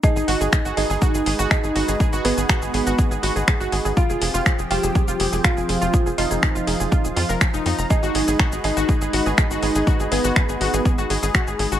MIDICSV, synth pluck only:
0, 0, Header, 1, 2, 480
1, 0, Start_track
1, 0, Tempo, 491803
1, 34, Time_signature, 4, 2, 24, 8
1, 11514, End_track
2, 0, Start_track
2, 0, Title_t, "Synth pluck"
2, 0, Program_c, 0, 84
2, 33, Note_on_c, 0, 68, 83
2, 77, Note_off_c, 0, 68, 0
2, 158, Note_on_c, 0, 68, 75
2, 258, Note_off_c, 0, 68, 0
2, 272, Note_on_c, 0, 66, 103
2, 381, Note_off_c, 0, 66, 0
2, 398, Note_on_c, 0, 68, 78
2, 438, Note_off_c, 0, 68, 0
2, 513, Note_on_c, 0, 68, 81
2, 621, Note_off_c, 0, 68, 0
2, 638, Note_on_c, 0, 66, 99
2, 738, Note_off_c, 0, 66, 0
2, 753, Note_on_c, 0, 68, 77
2, 796, Note_off_c, 0, 68, 0
2, 877, Note_on_c, 0, 68, 77
2, 977, Note_off_c, 0, 68, 0
2, 991, Note_on_c, 0, 66, 101
2, 1100, Note_off_c, 0, 66, 0
2, 1116, Note_on_c, 0, 68, 74
2, 1157, Note_off_c, 0, 68, 0
2, 1231, Note_on_c, 0, 68, 78
2, 1340, Note_off_c, 0, 68, 0
2, 1356, Note_on_c, 0, 66, 105
2, 1457, Note_off_c, 0, 66, 0
2, 1473, Note_on_c, 0, 68, 81
2, 1516, Note_off_c, 0, 68, 0
2, 1598, Note_on_c, 0, 68, 78
2, 1698, Note_off_c, 0, 68, 0
2, 1713, Note_on_c, 0, 66, 100
2, 1821, Note_off_c, 0, 66, 0
2, 1838, Note_on_c, 0, 68, 75
2, 1878, Note_off_c, 0, 68, 0
2, 1953, Note_on_c, 0, 68, 84
2, 2061, Note_off_c, 0, 68, 0
2, 2077, Note_on_c, 0, 66, 106
2, 2177, Note_off_c, 0, 66, 0
2, 2193, Note_on_c, 0, 68, 80
2, 2236, Note_off_c, 0, 68, 0
2, 2318, Note_on_c, 0, 68, 74
2, 2418, Note_off_c, 0, 68, 0
2, 2433, Note_on_c, 0, 66, 101
2, 2541, Note_off_c, 0, 66, 0
2, 2558, Note_on_c, 0, 68, 76
2, 2598, Note_off_c, 0, 68, 0
2, 2673, Note_on_c, 0, 68, 79
2, 2781, Note_off_c, 0, 68, 0
2, 2797, Note_on_c, 0, 66, 98
2, 2897, Note_off_c, 0, 66, 0
2, 2912, Note_on_c, 0, 68, 83
2, 2956, Note_off_c, 0, 68, 0
2, 3037, Note_on_c, 0, 68, 74
2, 3137, Note_off_c, 0, 68, 0
2, 3152, Note_on_c, 0, 66, 101
2, 3260, Note_off_c, 0, 66, 0
2, 3278, Note_on_c, 0, 68, 80
2, 3318, Note_off_c, 0, 68, 0
2, 3393, Note_on_c, 0, 68, 83
2, 3501, Note_off_c, 0, 68, 0
2, 3517, Note_on_c, 0, 66, 103
2, 3617, Note_off_c, 0, 66, 0
2, 3633, Note_on_c, 0, 68, 78
2, 3676, Note_off_c, 0, 68, 0
2, 3758, Note_on_c, 0, 68, 79
2, 3858, Note_off_c, 0, 68, 0
2, 3873, Note_on_c, 0, 65, 98
2, 3981, Note_off_c, 0, 65, 0
2, 3998, Note_on_c, 0, 68, 79
2, 4038, Note_off_c, 0, 68, 0
2, 4112, Note_on_c, 0, 68, 82
2, 4221, Note_off_c, 0, 68, 0
2, 4237, Note_on_c, 0, 65, 104
2, 4337, Note_off_c, 0, 65, 0
2, 4354, Note_on_c, 0, 68, 81
2, 4397, Note_off_c, 0, 68, 0
2, 4478, Note_on_c, 0, 68, 75
2, 4578, Note_off_c, 0, 68, 0
2, 4592, Note_on_c, 0, 65, 101
2, 4700, Note_off_c, 0, 65, 0
2, 4717, Note_on_c, 0, 68, 77
2, 4758, Note_off_c, 0, 68, 0
2, 4832, Note_on_c, 0, 68, 80
2, 4941, Note_off_c, 0, 68, 0
2, 4959, Note_on_c, 0, 65, 99
2, 5058, Note_off_c, 0, 65, 0
2, 5073, Note_on_c, 0, 68, 76
2, 5116, Note_off_c, 0, 68, 0
2, 5198, Note_on_c, 0, 68, 77
2, 5298, Note_off_c, 0, 68, 0
2, 5312, Note_on_c, 0, 65, 104
2, 5421, Note_off_c, 0, 65, 0
2, 5437, Note_on_c, 0, 68, 77
2, 5478, Note_off_c, 0, 68, 0
2, 5553, Note_on_c, 0, 68, 78
2, 5661, Note_off_c, 0, 68, 0
2, 5676, Note_on_c, 0, 65, 103
2, 5777, Note_off_c, 0, 65, 0
2, 5792, Note_on_c, 0, 68, 83
2, 5836, Note_off_c, 0, 68, 0
2, 5917, Note_on_c, 0, 68, 77
2, 6017, Note_off_c, 0, 68, 0
2, 6031, Note_on_c, 0, 65, 103
2, 6140, Note_off_c, 0, 65, 0
2, 6155, Note_on_c, 0, 68, 77
2, 6197, Note_off_c, 0, 68, 0
2, 6272, Note_on_c, 0, 68, 82
2, 6380, Note_off_c, 0, 68, 0
2, 6395, Note_on_c, 0, 65, 95
2, 6496, Note_off_c, 0, 65, 0
2, 6511, Note_on_c, 0, 68, 79
2, 6556, Note_off_c, 0, 68, 0
2, 6636, Note_on_c, 0, 68, 73
2, 6737, Note_off_c, 0, 68, 0
2, 6751, Note_on_c, 0, 65, 97
2, 6860, Note_off_c, 0, 65, 0
2, 6875, Note_on_c, 0, 68, 74
2, 6917, Note_off_c, 0, 68, 0
2, 6991, Note_on_c, 0, 65, 106
2, 7064, Note_off_c, 0, 65, 0
2, 7117, Note_on_c, 0, 70, 82
2, 7184, Note_off_c, 0, 70, 0
2, 7233, Note_on_c, 0, 80, 80
2, 7341, Note_off_c, 0, 80, 0
2, 7357, Note_on_c, 0, 63, 102
2, 7457, Note_off_c, 0, 63, 0
2, 7473, Note_on_c, 0, 63, 98
2, 7545, Note_off_c, 0, 63, 0
2, 7598, Note_on_c, 0, 82, 76
2, 7698, Note_off_c, 0, 82, 0
2, 7712, Note_on_c, 0, 68, 81
2, 7820, Note_off_c, 0, 68, 0
2, 7837, Note_on_c, 0, 66, 106
2, 7937, Note_off_c, 0, 66, 0
2, 7952, Note_on_c, 0, 68, 77
2, 7996, Note_off_c, 0, 68, 0
2, 8078, Note_on_c, 0, 68, 74
2, 8178, Note_off_c, 0, 68, 0
2, 8193, Note_on_c, 0, 66, 104
2, 8301, Note_off_c, 0, 66, 0
2, 8319, Note_on_c, 0, 68, 76
2, 8358, Note_off_c, 0, 68, 0
2, 8434, Note_on_c, 0, 68, 74
2, 8541, Note_off_c, 0, 68, 0
2, 8559, Note_on_c, 0, 66, 98
2, 8658, Note_off_c, 0, 66, 0
2, 8673, Note_on_c, 0, 68, 81
2, 8717, Note_off_c, 0, 68, 0
2, 8800, Note_on_c, 0, 68, 78
2, 8898, Note_off_c, 0, 68, 0
2, 8915, Note_on_c, 0, 66, 101
2, 9022, Note_off_c, 0, 66, 0
2, 9039, Note_on_c, 0, 68, 82
2, 9079, Note_off_c, 0, 68, 0
2, 9155, Note_on_c, 0, 68, 80
2, 9262, Note_off_c, 0, 68, 0
2, 9280, Note_on_c, 0, 66, 98
2, 9379, Note_off_c, 0, 66, 0
2, 9396, Note_on_c, 0, 68, 77
2, 9438, Note_off_c, 0, 68, 0
2, 9520, Note_on_c, 0, 68, 79
2, 9618, Note_off_c, 0, 68, 0
2, 9634, Note_on_c, 0, 66, 99
2, 9742, Note_off_c, 0, 66, 0
2, 9759, Note_on_c, 0, 68, 77
2, 9799, Note_off_c, 0, 68, 0
2, 9875, Note_on_c, 0, 68, 80
2, 9982, Note_off_c, 0, 68, 0
2, 9999, Note_on_c, 0, 66, 102
2, 10098, Note_off_c, 0, 66, 0
2, 10114, Note_on_c, 0, 68, 81
2, 10157, Note_off_c, 0, 68, 0
2, 10240, Note_on_c, 0, 68, 75
2, 10338, Note_off_c, 0, 68, 0
2, 10355, Note_on_c, 0, 66, 104
2, 10462, Note_off_c, 0, 66, 0
2, 10479, Note_on_c, 0, 68, 77
2, 10518, Note_off_c, 0, 68, 0
2, 10594, Note_on_c, 0, 68, 78
2, 10701, Note_off_c, 0, 68, 0
2, 10720, Note_on_c, 0, 66, 101
2, 10819, Note_off_c, 0, 66, 0
2, 10835, Note_on_c, 0, 68, 77
2, 10877, Note_off_c, 0, 68, 0
2, 10959, Note_on_c, 0, 68, 81
2, 11058, Note_off_c, 0, 68, 0
2, 11074, Note_on_c, 0, 66, 102
2, 11181, Note_off_c, 0, 66, 0
2, 11199, Note_on_c, 0, 68, 78
2, 11239, Note_off_c, 0, 68, 0
2, 11314, Note_on_c, 0, 68, 76
2, 11422, Note_off_c, 0, 68, 0
2, 11438, Note_on_c, 0, 66, 99
2, 11514, Note_off_c, 0, 66, 0
2, 11514, End_track
0, 0, End_of_file